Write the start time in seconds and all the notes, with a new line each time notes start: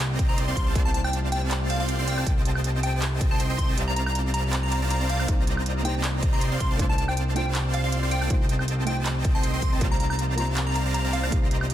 Already playing: C2 C3 A#3 C4 C5 D5 D#5 A#5
0.00 clap, closed hi-hat
0.19 kick, closed hi-hat
0.29 C4 C5 D5 D#5 A#5 C6
0.38 closed hi-hat
0.48 C4 C5 D5 F5 C6
0.56 C2 A3 F4 C6, kick, closed hi-hat
0.67 C4 C5 D5 F5 A5
0.75 C4 C5 D5 F5 A5, kick, closed hi-hat
0.85 A5
0.94 A5, closed hi-hat
1.04 G5, high woodblock
1.13 closed hi-hat
1.32 G5, closed hi-hat
1.42 C4 C5 D5 F5 A5
1.51 clap, closed hi-hat
1.70 F5, closed hi-hat
1.80 C4 C5 D5 F5 C6
1.89 closed hi-hat
1.99 C4 C5 D5 F5 C6
2.08 G5, closed hi-hat
2.18 C4 C5 D5 F5 A5, high woodblock
2.26 C2 C4 C5 D#5 G5 A5, kick, closed hi-hat
2.45 closed hi-hat
2.55 high woodblock
2.64 closed hi-hat
2.83 G5, closed hi-hat
2.93 C4 C5 D#5 G5 A5
3.02 clap, closed hi-hat
3.21 kick, closed hi-hat
3.31 C4 C5 D#5 G5 A5 C6
3.40 closed hi-hat
3.50 C4 C5 D#5 G5 C6
3.58 C6, kick, closed hi-hat
3.69 C4 C5 D#5 G5 A5
3.77 C2 A#3 C4 C5 D5 F5 A5 A#5, closed hi-hat
3.88 A#5
3.96 A#5, closed hi-hat
4.06 A#5, high woodblock
4.15 closed hi-hat
4.34 A#5, closed hi-hat
4.44 C4 C5 D5 F5 A5 A#5
4.53 clap, closed hi-hat
4.63 A#5
4.72 A#5, closed hi-hat
4.82 C4 C5 D5 F5 A5 A#5
4.90 A#5, closed hi-hat
5.01 C4 C5 D5 F5 A5 A#5
5.09 F5, closed hi-hat
5.20 C4 C5 D5 F5 A5 A#5, high woodblock
5.27 C2 A#3 C4 D#4 G4 C5 D5 D#5 A#5, kick, closed hi-hat
5.47 closed hi-hat
5.57 high woodblock
5.66 closed hi-hat
5.83 A#3 D#4 G4 G5, closed hi-hat
5.87 C5
5.95 C4 C5 D5 D#5 A#5
6.04 clap, closed hi-hat
6.23 kick, closed hi-hat
6.33 C4 C5 D5 D#5 A#5 C6
6.41 closed hi-hat
6.52 C4 C5 D5 F5 C6
6.60 C2 C3 A3 F4 C6, kick, closed hi-hat
6.71 C4 C5 D5 F5 A5
6.77 A3 C4 D4 F4 C5 D5 F5 A5, kick, closed hi-hat
6.81 C5
6.89 A5
6.98 A5, closed hi-hat
7.08 G5, high woodblock
7.17 closed hi-hat
7.34 A3 D4 F4 C5 G5, closed hi-hat
7.46 C4 C5 D5 F5 A5
7.55 clap, closed hi-hat
7.74 F5, closed hi-hat
7.84 C4 C5 D5 F5 C6
7.92 closed hi-hat
8.03 C4 C5 D5 F5 C6
8.11 G5, closed hi-hat
8.21 C4 C5 D5 F5 A5, high woodblock
8.28 C2 A3 C4 D#4 F4 C5 D#5 G5 A5, kick, closed hi-hat
8.49 closed hi-hat
8.59 high woodblock
8.68 closed hi-hat
8.85 A3 D#4 F4 G5, closed hi-hat
8.89 C5
8.97 C4 C5 D#5 G5 A5
9.06 clap, closed hi-hat
9.25 kick, closed hi-hat
9.35 C4 C5 D#5 G5 A5 C6
9.43 closed hi-hat
9.54 C4 C5 D#5 G5 C6
9.62 C6, kick, closed hi-hat
9.72 C4 C5 D#5 G5 A5
9.79 C2 A#3 C4 F4 C5 D5 F5 A5 A#5, kick, closed hi-hat
9.83 C5
9.91 A#5
10.00 A#5, closed hi-hat
10.10 A#5, high woodblock
10.19 closed hi-hat
10.36 A#3 F4 C5 A#5, closed hi-hat
10.48 C4 C5 D5 F5 A5 A#5
10.57 clap, closed hi-hat
10.67 A#5
10.76 A#5, closed hi-hat
10.86 C4 C5 D5 F5 A5 A#5
10.94 A#5, closed hi-hat
11.04 C4 C5 D5 F5 A5 A#5
11.13 F5, closed hi-hat
11.23 C4 C5 D5 F5 A5 A#5, high woodblock
11.30 C2 A#3 C4 D#4 G4 C5 D5 D#5 A#5, kick, closed hi-hat
11.34 C5
11.51 closed hi-hat
11.61 high woodblock
11.70 closed hi-hat